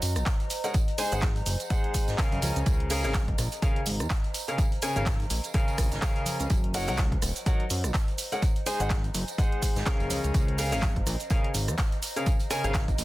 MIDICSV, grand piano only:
0, 0, Header, 1, 2, 480
1, 0, Start_track
1, 0, Key_signature, -5, "major"
1, 0, Tempo, 480000
1, 744, Time_signature, 4, 2, 24, 8
1, 13043, End_track
2, 0, Start_track
2, 0, Title_t, "Grand piano"
2, 0, Program_c, 0, 0
2, 640, Note_on_c, 0, 56, 73
2, 640, Note_on_c, 0, 63, 66
2, 640, Note_on_c, 0, 70, 67
2, 640, Note_on_c, 0, 73, 64
2, 640, Note_on_c, 0, 78, 78
2, 731, Note_off_c, 0, 56, 0
2, 731, Note_off_c, 0, 63, 0
2, 731, Note_off_c, 0, 70, 0
2, 731, Note_off_c, 0, 73, 0
2, 731, Note_off_c, 0, 78, 0
2, 983, Note_on_c, 0, 56, 96
2, 983, Note_on_c, 0, 63, 92
2, 983, Note_on_c, 0, 68, 89
2, 983, Note_on_c, 0, 72, 86
2, 983, Note_on_c, 0, 80, 107
2, 1100, Note_off_c, 0, 56, 0
2, 1100, Note_off_c, 0, 63, 0
2, 1100, Note_off_c, 0, 68, 0
2, 1100, Note_off_c, 0, 72, 0
2, 1100, Note_off_c, 0, 80, 0
2, 1122, Note_on_c, 0, 56, 94
2, 1122, Note_on_c, 0, 63, 84
2, 1122, Note_on_c, 0, 68, 87
2, 1122, Note_on_c, 0, 72, 92
2, 1122, Note_on_c, 0, 78, 104
2, 1242, Note_off_c, 0, 63, 0
2, 1242, Note_off_c, 0, 78, 0
2, 1243, Note_off_c, 0, 56, 0
2, 1243, Note_off_c, 0, 68, 0
2, 1243, Note_off_c, 0, 72, 0
2, 1704, Note_on_c, 0, 56, 83
2, 1704, Note_on_c, 0, 68, 80
2, 1704, Note_on_c, 0, 72, 77
2, 1704, Note_on_c, 0, 78, 98
2, 1705, Note_on_c, 0, 63, 77
2, 2159, Note_off_c, 0, 56, 0
2, 2159, Note_off_c, 0, 78, 0
2, 2160, Note_off_c, 0, 63, 0
2, 2160, Note_off_c, 0, 68, 0
2, 2160, Note_off_c, 0, 72, 0
2, 2185, Note_on_c, 0, 49, 95
2, 2185, Note_on_c, 0, 61, 90
2, 2185, Note_on_c, 0, 68, 90
2, 2185, Note_on_c, 0, 70, 87
2, 2185, Note_on_c, 0, 77, 105
2, 2880, Note_off_c, 0, 49, 0
2, 2880, Note_off_c, 0, 61, 0
2, 2880, Note_off_c, 0, 68, 0
2, 2880, Note_off_c, 0, 70, 0
2, 2880, Note_off_c, 0, 77, 0
2, 2904, Note_on_c, 0, 49, 82
2, 2904, Note_on_c, 0, 61, 74
2, 2904, Note_on_c, 0, 68, 75
2, 2904, Note_on_c, 0, 70, 79
2, 2904, Note_on_c, 0, 77, 92
2, 3021, Note_off_c, 0, 49, 0
2, 3021, Note_off_c, 0, 61, 0
2, 3021, Note_off_c, 0, 68, 0
2, 3021, Note_off_c, 0, 70, 0
2, 3021, Note_off_c, 0, 77, 0
2, 3040, Note_on_c, 0, 68, 87
2, 3041, Note_on_c, 0, 61, 89
2, 3041, Note_on_c, 0, 70, 89
2, 3041, Note_on_c, 0, 77, 104
2, 3042, Note_on_c, 0, 49, 98
2, 3162, Note_off_c, 0, 49, 0
2, 3162, Note_off_c, 0, 61, 0
2, 3162, Note_off_c, 0, 68, 0
2, 3162, Note_off_c, 0, 70, 0
2, 3162, Note_off_c, 0, 77, 0
2, 3624, Note_on_c, 0, 49, 86
2, 3624, Note_on_c, 0, 61, 77
2, 3624, Note_on_c, 0, 70, 76
2, 3624, Note_on_c, 0, 77, 92
2, 3625, Note_on_c, 0, 68, 75
2, 3775, Note_off_c, 0, 49, 0
2, 3775, Note_off_c, 0, 61, 0
2, 3775, Note_off_c, 0, 68, 0
2, 3775, Note_off_c, 0, 70, 0
2, 3775, Note_off_c, 0, 77, 0
2, 4481, Note_on_c, 0, 70, 68
2, 4482, Note_on_c, 0, 49, 74
2, 4482, Note_on_c, 0, 61, 65
2, 4482, Note_on_c, 0, 68, 66
2, 4482, Note_on_c, 0, 77, 79
2, 4602, Note_off_c, 0, 49, 0
2, 4602, Note_off_c, 0, 61, 0
2, 4602, Note_off_c, 0, 68, 0
2, 4602, Note_off_c, 0, 70, 0
2, 4602, Note_off_c, 0, 77, 0
2, 4822, Note_on_c, 0, 49, 97
2, 4823, Note_on_c, 0, 68, 90
2, 4823, Note_on_c, 0, 70, 84
2, 4823, Note_on_c, 0, 80, 105
2, 4824, Note_on_c, 0, 61, 86
2, 4940, Note_off_c, 0, 49, 0
2, 4940, Note_off_c, 0, 61, 0
2, 4940, Note_off_c, 0, 68, 0
2, 4940, Note_off_c, 0, 70, 0
2, 4940, Note_off_c, 0, 80, 0
2, 4960, Note_on_c, 0, 61, 86
2, 4960, Note_on_c, 0, 68, 84
2, 4960, Note_on_c, 0, 70, 86
2, 4960, Note_on_c, 0, 77, 102
2, 4961, Note_on_c, 0, 49, 93
2, 5082, Note_off_c, 0, 49, 0
2, 5082, Note_off_c, 0, 61, 0
2, 5082, Note_off_c, 0, 68, 0
2, 5082, Note_off_c, 0, 70, 0
2, 5082, Note_off_c, 0, 77, 0
2, 5542, Note_on_c, 0, 77, 93
2, 5543, Note_on_c, 0, 49, 89
2, 5543, Note_on_c, 0, 61, 78
2, 5543, Note_on_c, 0, 68, 78
2, 5543, Note_on_c, 0, 70, 78
2, 5998, Note_off_c, 0, 77, 0
2, 5999, Note_off_c, 0, 49, 0
2, 5999, Note_off_c, 0, 61, 0
2, 5999, Note_off_c, 0, 68, 0
2, 5999, Note_off_c, 0, 70, 0
2, 6022, Note_on_c, 0, 70, 88
2, 6023, Note_on_c, 0, 49, 95
2, 6023, Note_on_c, 0, 61, 86
2, 6023, Note_on_c, 0, 68, 86
2, 6023, Note_on_c, 0, 77, 102
2, 6491, Note_off_c, 0, 49, 0
2, 6491, Note_off_c, 0, 61, 0
2, 6491, Note_off_c, 0, 68, 0
2, 6491, Note_off_c, 0, 70, 0
2, 6491, Note_off_c, 0, 77, 0
2, 6742, Note_on_c, 0, 63, 76
2, 6743, Note_on_c, 0, 54, 80
2, 6743, Note_on_c, 0, 70, 77
2, 6743, Note_on_c, 0, 73, 76
2, 6743, Note_on_c, 0, 78, 97
2, 6860, Note_off_c, 0, 54, 0
2, 6860, Note_off_c, 0, 63, 0
2, 6860, Note_off_c, 0, 70, 0
2, 6860, Note_off_c, 0, 73, 0
2, 6860, Note_off_c, 0, 78, 0
2, 6880, Note_on_c, 0, 54, 96
2, 6880, Note_on_c, 0, 63, 87
2, 6880, Note_on_c, 0, 70, 89
2, 6880, Note_on_c, 0, 73, 86
2, 6880, Note_on_c, 0, 78, 105
2, 7001, Note_off_c, 0, 73, 0
2, 7002, Note_off_c, 0, 54, 0
2, 7002, Note_off_c, 0, 63, 0
2, 7002, Note_off_c, 0, 70, 0
2, 7002, Note_off_c, 0, 78, 0
2, 7463, Note_on_c, 0, 54, 86
2, 7463, Note_on_c, 0, 70, 75
2, 7463, Note_on_c, 0, 73, 75
2, 7463, Note_on_c, 0, 78, 89
2, 7464, Note_on_c, 0, 63, 73
2, 7614, Note_off_c, 0, 70, 0
2, 7614, Note_off_c, 0, 73, 0
2, 7615, Note_off_c, 0, 54, 0
2, 7615, Note_off_c, 0, 63, 0
2, 7615, Note_off_c, 0, 78, 0
2, 8320, Note_on_c, 0, 63, 67
2, 8321, Note_on_c, 0, 56, 75
2, 8321, Note_on_c, 0, 70, 64
2, 8321, Note_on_c, 0, 73, 66
2, 8322, Note_on_c, 0, 78, 81
2, 8411, Note_off_c, 0, 63, 0
2, 8412, Note_off_c, 0, 56, 0
2, 8412, Note_off_c, 0, 70, 0
2, 8412, Note_off_c, 0, 73, 0
2, 8412, Note_off_c, 0, 78, 0
2, 8663, Note_on_c, 0, 56, 101
2, 8663, Note_on_c, 0, 63, 92
2, 8663, Note_on_c, 0, 68, 86
2, 8663, Note_on_c, 0, 72, 90
2, 8663, Note_on_c, 0, 80, 106
2, 8780, Note_off_c, 0, 56, 0
2, 8780, Note_off_c, 0, 63, 0
2, 8780, Note_off_c, 0, 68, 0
2, 8780, Note_off_c, 0, 72, 0
2, 8780, Note_off_c, 0, 80, 0
2, 8802, Note_on_c, 0, 56, 98
2, 8802, Note_on_c, 0, 63, 90
2, 8802, Note_on_c, 0, 68, 89
2, 8802, Note_on_c, 0, 72, 87
2, 8802, Note_on_c, 0, 78, 108
2, 8922, Note_off_c, 0, 56, 0
2, 8922, Note_off_c, 0, 68, 0
2, 8922, Note_off_c, 0, 72, 0
2, 8923, Note_off_c, 0, 63, 0
2, 8923, Note_off_c, 0, 78, 0
2, 9383, Note_on_c, 0, 63, 77
2, 9384, Note_on_c, 0, 56, 86
2, 9384, Note_on_c, 0, 68, 76
2, 9384, Note_on_c, 0, 72, 79
2, 9384, Note_on_c, 0, 78, 95
2, 9839, Note_off_c, 0, 56, 0
2, 9839, Note_off_c, 0, 63, 0
2, 9839, Note_off_c, 0, 68, 0
2, 9839, Note_off_c, 0, 72, 0
2, 9839, Note_off_c, 0, 78, 0
2, 9863, Note_on_c, 0, 68, 92
2, 9864, Note_on_c, 0, 49, 96
2, 9864, Note_on_c, 0, 61, 89
2, 9864, Note_on_c, 0, 70, 89
2, 9864, Note_on_c, 0, 77, 103
2, 10559, Note_off_c, 0, 61, 0
2, 10559, Note_off_c, 0, 68, 0
2, 10560, Note_off_c, 0, 49, 0
2, 10560, Note_off_c, 0, 70, 0
2, 10560, Note_off_c, 0, 77, 0
2, 10584, Note_on_c, 0, 49, 83
2, 10584, Note_on_c, 0, 61, 75
2, 10584, Note_on_c, 0, 77, 97
2, 10585, Note_on_c, 0, 68, 78
2, 10585, Note_on_c, 0, 70, 77
2, 10701, Note_off_c, 0, 49, 0
2, 10701, Note_off_c, 0, 61, 0
2, 10701, Note_off_c, 0, 68, 0
2, 10701, Note_off_c, 0, 70, 0
2, 10701, Note_off_c, 0, 77, 0
2, 10720, Note_on_c, 0, 70, 89
2, 10720, Note_on_c, 0, 77, 110
2, 10721, Note_on_c, 0, 49, 100
2, 10721, Note_on_c, 0, 61, 90
2, 10722, Note_on_c, 0, 68, 90
2, 10842, Note_off_c, 0, 49, 0
2, 10842, Note_off_c, 0, 61, 0
2, 10842, Note_off_c, 0, 68, 0
2, 10842, Note_off_c, 0, 70, 0
2, 10842, Note_off_c, 0, 77, 0
2, 11305, Note_on_c, 0, 49, 81
2, 11305, Note_on_c, 0, 61, 77
2, 11305, Note_on_c, 0, 68, 77
2, 11305, Note_on_c, 0, 77, 92
2, 11306, Note_on_c, 0, 70, 78
2, 11455, Note_off_c, 0, 49, 0
2, 11455, Note_off_c, 0, 61, 0
2, 11455, Note_off_c, 0, 68, 0
2, 11456, Note_off_c, 0, 70, 0
2, 11456, Note_off_c, 0, 77, 0
2, 12162, Note_on_c, 0, 61, 68
2, 12163, Note_on_c, 0, 49, 72
2, 12163, Note_on_c, 0, 68, 67
2, 12163, Note_on_c, 0, 70, 67
2, 12163, Note_on_c, 0, 77, 83
2, 12283, Note_off_c, 0, 49, 0
2, 12283, Note_off_c, 0, 61, 0
2, 12283, Note_off_c, 0, 68, 0
2, 12283, Note_off_c, 0, 70, 0
2, 12283, Note_off_c, 0, 77, 0
2, 12505, Note_on_c, 0, 49, 98
2, 12505, Note_on_c, 0, 61, 90
2, 12505, Note_on_c, 0, 68, 91
2, 12505, Note_on_c, 0, 70, 91
2, 12505, Note_on_c, 0, 80, 114
2, 12621, Note_off_c, 0, 49, 0
2, 12621, Note_off_c, 0, 61, 0
2, 12621, Note_off_c, 0, 68, 0
2, 12621, Note_off_c, 0, 70, 0
2, 12621, Note_off_c, 0, 80, 0
2, 12641, Note_on_c, 0, 49, 101
2, 12641, Note_on_c, 0, 61, 90
2, 12641, Note_on_c, 0, 68, 91
2, 12641, Note_on_c, 0, 70, 89
2, 12642, Note_on_c, 0, 77, 105
2, 12762, Note_off_c, 0, 49, 0
2, 12762, Note_off_c, 0, 61, 0
2, 12762, Note_off_c, 0, 68, 0
2, 12762, Note_off_c, 0, 70, 0
2, 12762, Note_off_c, 0, 77, 0
2, 13043, End_track
0, 0, End_of_file